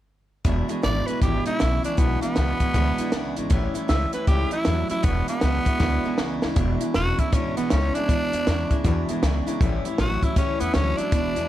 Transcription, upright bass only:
0.45 E1
0.70 muted upright bass stroke
0.84 G#1
1.09 muted upright bass stroke
1.22 G#1
1.47 muted upright bass stroke
1.61 B1
1.86 muted upright bass stroke
1.98 B1
2.24 muted upright bass stroke
2.37 C#2
2.74 D2
2.99 muted upright bass stroke
3.13 C#2
3.37 G#1
3.51 A1
3.75 muted upright bass stroke
3.89 C#2
4.13 muted upright bass stroke
4.28 C#2
4.53 muted upright bass stroke
4.67 E2
4.91 muted upright bass stroke
5.04 E1
5.29 muted upright bass stroke
5.43 C#2
5.66 muted upright bass stroke
5.80 D2
6.05 muted upright bass stroke
6.19 C#2
6.44 D2
6.57 E1
6.81 muted upright bass stroke
6.95 E1
7.19 muted upright bass stroke
7.33 G#1
7.57 B1
7.72 C#2
7.96 muted upright bass stroke
8.09 E2
8.33 E2
8.48 E2
8.71 muted upright bass stroke
8.85 E2
9.10 muted upright bass stroke
9.23 C#2
9.47 muted upright bass stroke
9.61 A1
9.85 muted upright bass stroke
9.98 A1
10.23 muted upright bass stroke
10.36 C#2
10.61 E2
10.75 D2
10.99 muted upright bass stroke
11.12 E1
11.37 E2

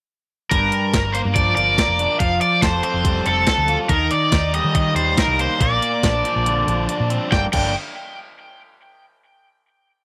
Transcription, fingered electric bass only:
0.51 G1
0.94 G1
1.25 G2
1.56 G1
1.88 F1
2.20 F1
2.62 F1
2.94 F1
3.26 F1
3.58 D2
3.89 D#2
4.32 D#2
4.64 D#3
4.95 D#2
5.28 C2
5.60 A#1
6.03 A#1
6.36 A#1
6.67 A#1
7.00 A#2
7.32 G1
7.54 G1

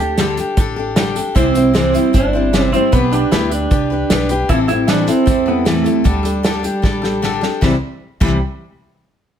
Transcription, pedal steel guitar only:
Already playing: G4
1.36 C4
1.75 C4
2.15 D4
2.62 C4
2.73 C4
2.93 B3
3.12 D4
3.32 E4
3.52 D4
4.50 E4
4.68 E4
4.89 D4
5.08 C4
5.48 B3
5.67 A3
6.07 G3
7.62 G3
8.23 G3

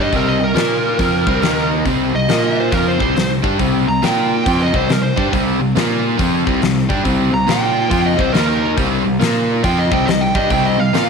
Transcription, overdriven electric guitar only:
Already playing: G3 D4 G4
0.13 C3 G3 C4
0.40 C3 G3
0.55 A#3 F4 A#4
0.99 F3 C4 F4
1.27 C3 G3 C4
1.42 D#3 A#3 D#4
1.86 C3 G3 C4
2.14 C3 G3
2.29 A#3 F4 A#4
2.72 F3 C4 F4
2.99 C3 G3 C4
3.16 C3 G3
3.43 G3 D4 G4
3.59 C3 G3 C4
3.87 C3 G3
4.02 A#3 F4 A#4
4.46 F3 C4 F4
4.73 C3 G3 C4
4.90 C3 G3
5.16 G3 D4 G4
5.32 C3 G3 C4
5.61 C3 G3
5.77 A#3 F4 A#4
6.18 F3 C4 F4
6.46 C3 G3 C4
6.62 C3 G3
6.89 G3 D4 G4
7.03 C3 G3 C4
7.31 C3 G3
7.47 A#3 F4 A#4
7.89 F3 C4 F4
8.17 C3 G3 C4
8.33 D#3 A#3 D#4
8.76 C3 G3 C4
9.04 C3 G3
9.20 A#3 F4 A#4
9.63 F3 C4 F4
9.91 C3 G3 C4
10.08 C3 G3
10.36 G3 D4 G4
10.50 C3 G3 C4
10.78 C3 G3
10.93 A#3 F4 A#4

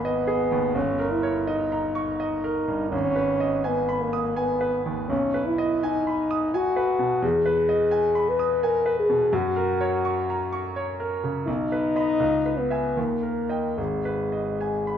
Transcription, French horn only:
0.04 B3
0.76 C#4
1.11 E4
1.47 D#4
2.91 C#4
3.66 B3
4.01 A#3
4.36 B3
5.09 C#4
5.46 E4
5.84 D#4
6.55 F#4
7.24 G#4
8.29 B4
8.64 A#4
8.99 G#4
9.34 F#4
11.47 D#4
12.59 B3
12.98 A#3
13.79 G#3

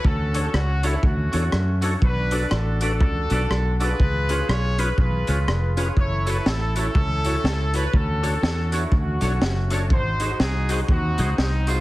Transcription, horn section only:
0.06 C#4 F#4 A4
0.55 F#4
0.85 E4
1.05 A3 C#4 F#4
2.04 D4 F#4 B4
2.54 A4
2.83 D4 F#4 A4
3.82 F4 G#4 B4
4.50 C#5
4.80 B4
4.99 F4 G#4 B4
5.98 E4 A4 C#5
6.28 B4
6.47 A4
6.78 C#4 E4 A4
7.75 B4
7.95 C#4 F#4 A4
8.76 E4
8.95 A3 C#4 F#4
9.92 D#4 F#4 C5
10.42 G#4
10.71 G#4
10.91 C4 D#4 F#4
11.41 D#4
11.70 G#3 B3 F4

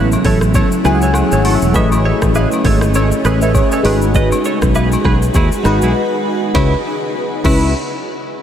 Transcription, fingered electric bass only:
Already playing: A1
0.25 A1
0.85 C#2
1.32 G#1
1.62 E1
1.75 A1
2.22 A1
2.65 G#1
3.25 A1
3.85 G#1
4.62 B1
5.05 B1
5.35 D#2
5.65 G#1
5.82 B1
6.55 C#2
7.45 C#2

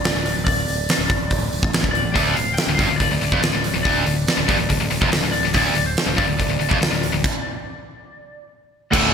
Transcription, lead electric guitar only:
Already playing: D5
0.45 D5
1.91 D5
2.12 D5
2.23 D5
2.34 F5
2.54 G5
2.74 F5
2.96 D5
3.83 D5
5.32 D5
5.54 D5
5.64 D5
5.86 C5
6.17 D5
8.92 G5

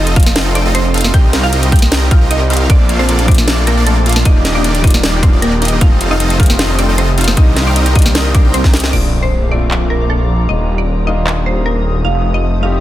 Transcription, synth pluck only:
0.16 F4 F5
0.55 D4 D5
0.75 C4 C5
1.14 G4 G5
1.43 F4 F5
1.72 G4 G5
2.11 F4 F5
2.31 D#4 D#5
2.70 D4 D5
2.99 C4 C5
3.28 D4 D5
3.67 A#3 A#4
3.86 A3 A4
4.26 D#4 D#5
4.55 D4 D5
4.84 D#4 D#5
5.23 C4 C5
5.42 A#3 A#4
5.81 F4 F5
6.11 D#4 D#5
6.40 F4 F5
6.79 D4 D5
6.98 C4 C5
7.37 D#4 D#5
7.67 D4 D5
7.96 D#4 D#5
8.34 D4 D5
8.54 C4 C5
8.93 D5
9.23 C5
9.51 D5
9.90 A#4
10.10 A4
10.49 D#5
10.78 D5
11.07 D#5
11.46 C5
11.66 A#4
12.05 F5
12.34 D#5
12.63 F5

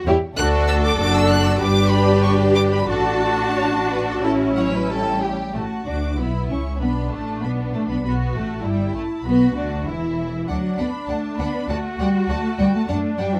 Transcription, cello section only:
0.07 G4
0.38 A4
1.61 G4
2.89 F#4
4.56 F#3
4.89 G3
5.54 A3
5.87 D4
6.19 B3
6.50 C#4
6.81 B3
7.12 A3
7.43 B3
7.74 A3
7.89 B3
8.04 B3
8.34 A3
8.65 G3
8.95 A3
9.26 B3
9.56 D3
9.87 E3
10.49 F#3
10.79 B3
11.10 A3
11.40 B3
11.70 A3
12.00 G3
12.30 A3
12.60 G3
12.75 A3
12.89 A3
13.18 G3
13.34 E3

